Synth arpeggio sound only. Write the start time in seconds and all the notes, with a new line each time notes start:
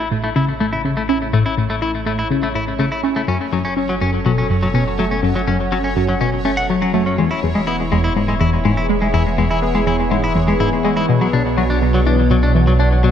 0.11 A2
0.36 C#3
0.60 A2
0.84 C#3
1.09 C#4
1.33 A2
1.58 A2
1.82 E4
2.06 A2
2.30 C#3
2.55 A2
2.79 C#3
3.04 C#4
3.28 F#2
3.52 F#2
3.77 C#4
4.01 F#2
4.26 B2
4.50 F#2
4.74 B2
4.99 A3
5.23 F#2
5.47 F#2
5.72 C#4
5.96 F#2
6.21 B2
6.45 C#4
6.70 F#3
6.94 F#2
7.18 E2
7.43 E2
7.67 B3
7.92 E2
8.16 G#2
8.41 E2
8.65 G#2
8.89 G#3
9.14 E2
9.38 E2
9.62 B3
9.87 E2
10.11 G#2
10.35 E2
10.60 G#2
10.84 G#3
11.09 B2
11.33 B2
11.57 F#4
11.82 B2
12.06 E3
12.30 B2
12.55 E3
12.79 D4
13.04 B2